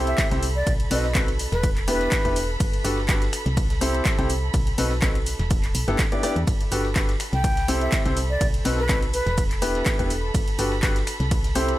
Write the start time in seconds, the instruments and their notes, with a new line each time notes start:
Already playing: fm bass C2, grand piano C4 E4 G4 A4 C5, violin section A4 B5
0.07 flute E5, closed hi-hat
0.18 kick, snare, clap, closed hi-hat, ride, shaker
0.31 fm bass C2, grand piano C4 E4 G4 A4 C5, snare, closed hi-hat
0.43 open hi-hat, shaker
0.56 flute D5
0.67 fm bass B1, kick, closed hi-hat, ride, shaker
0.80 closed hi-hat
0.91 fm bass B1, grand piano C4 D#4 F#4 A4 B4, flute D#5, open hi-hat
1.04 snare
1.15 grand piano C4 D#4 F#4 A4 B4, kick, snare, clap, closed hi-hat, ride, shaker
1.28 closed hi-hat
1.39 open hi-hat, shaker
1.52 fm bass E1, flute B4, snare, closed hi-hat
1.63 kick, closed hi-hat, ride, shaker
1.76 clap, closed hi-hat
1.88 grand piano B3 D4 E4 G4 B4, flute B4, open hi-hat, shaker
2.01 snare, closed hi-hat
2.12 kick, snare, clap, closed hi-hat, ride, shaker
2.25 fm bass E1, grand piano B3 D4 E4 G4 B4, closed hi-hat
2.36 open hi-hat, shaker
2.60 fm bass G1, kick, closed hi-hat, ride, shaker
2.73 closed hi-hat
2.84 fm bass G1, grand piano D4 F#4 G4 A4 B4, open hi-hat, shaker
2.98 snare
3.09 grand piano D4 F#4 G4 A4 B4, kick, snare, clap, closed hi-hat, ride, shaker
3.22 snare, closed hi-hat
3.33 finger snap, open hi-hat, shaker
3.46 fm bass C2, snare, closed hi-hat
3.57 kick, closed hi-hat, ride, shaker
3.70 snare, closed hi-hat
3.81 grand piano C4 E4 G4 A4 C5, open hi-hat, shaker
3.94 closed hi-hat
4.05 kick, snare, clap, closed hi-hat, ride, shaker
4.18 fm bass C2, grand piano C4 E4 G4 A4 C5, snare, closed hi-hat
4.30 open hi-hat, shaker
4.54 fm bass B1, kick, closed hi-hat, ride, shaker
4.67 closed hi-hat
4.78 fm bass B1, grand piano C4 D#4 F#4 A4 B4, open hi-hat
4.91 snare
5.02 grand piano C4 D#4 F#4 A4 B4, kick, snare, clap, closed hi-hat, ride, shaker
5.15 closed hi-hat
5.26 open hi-hat, shaker
5.39 fm bass E1, snare, closed hi-hat
5.51 kick, closed hi-hat, ride, shaker
5.64 clap, closed hi-hat
5.75 fm bass B1, open hi-hat, shaker
5.88 fm bass G1, grand piano B3 D4 E4 G4 A4, snare, closed hi-hat
5.99 kick, snare, clap, closed hi-hat, ride, shaker
6.12 grand piano B3 D4 E4 G4 D5, closed hi-hat
6.23 grand piano B3 D4 E4 G4 D5, open hi-hat, shaker
6.36 fm bass E2, closed hi-hat
6.47 fm bass G1, violin section A4 B5, kick, closed hi-hat, ride, shaker
6.61 closed hi-hat
6.72 fm bass G1, grand piano D4 F#4 G4 A4 B4, open hi-hat, shaker
6.85 snare
6.96 grand piano D4 F#4 G4 A4 B4, kick, snare, clap, closed hi-hat, ride, shaker
7.09 snare, closed hi-hat
7.20 finger snap, open hi-hat, shaker
7.33 fm bass C2, flute G5, snare, closed hi-hat
7.44 kick, closed hi-hat, ride, shaker
7.57 snare, closed hi-hat
7.68 grand piano C4 E4 G4 A4 C5, open hi-hat, shaker
7.81 flute E5, closed hi-hat
7.92 kick, snare, clap, closed hi-hat, ride, shaker
8.06 fm bass C2, grand piano C4 E4 G4 A4 C5, snare, closed hi-hat
8.17 open hi-hat, shaker
8.30 flute D5
8.41 fm bass B1, kick, closed hi-hat, ride, shaker
8.54 closed hi-hat
8.65 fm bass B1, grand piano C4 D#4 F#4 A4 B4, open hi-hat
8.78 flute B4, snare
8.89 grand piano C4 D#4 F#4 A4 B4, kick, snare, clap, closed hi-hat, ride, shaker
9.02 closed hi-hat
9.13 flute B4, open hi-hat, shaker
9.26 fm bass E1, snare, closed hi-hat
9.38 kick, closed hi-hat, ride, shaker
9.51 clap, closed hi-hat
9.62 grand piano B3 D4 E4 G4 B4, open hi-hat, shaker
9.75 snare, closed hi-hat
9.86 kick, snare, clap, closed hi-hat, ride, shaker
9.99 fm bass E1, grand piano B3 D4 E4 G4 B4, closed hi-hat
10.10 open hi-hat, shaker
10.34 fm bass G1, kick, closed hi-hat, ride, shaker
10.48 closed hi-hat
10.59 fm bass G1, grand piano D4 F#4 G4 A4 B4, open hi-hat, shaker
10.72 snare
10.83 grand piano D4 F#4 G4 A4 B4, kick, snare, clap, closed hi-hat, ride, shaker
10.96 snare, closed hi-hat
11.07 finger snap, open hi-hat, shaker
11.20 fm bass C2, snare, closed hi-hat
11.31 kick, closed hi-hat, ride, shaker
11.44 snare, closed hi-hat
11.55 grand piano C4 E4 G4 A4 C5, open hi-hat, shaker
11.69 closed hi-hat